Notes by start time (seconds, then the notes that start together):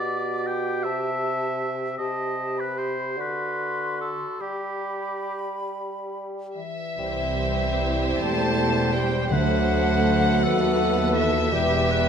Already playing: B2 G4 D5 D6
0.47 G5
0.83 C3 E5 A5
1.98 C3 G4 D#5 A5
2.58 B4 B5
2.78 C5
3.17 D3 F#4 B4 C6
4.01 A4
4.40 G3 G4 B5
6.55 E3 E5
6.97 C2 G3 C4 E4 G4 C5
8.19 E1 E2 A3 C5 A5
8.58 B3
8.94 G3 G5
9.30 D2 D3 F#3 A3 D4 A4 B4 C5 F#5
10.43 D#2 A3 B3 F#4 A4 B4
11.15 E3 E5
11.52 E1 E2 G3 B3 G4 B4
11.91 B4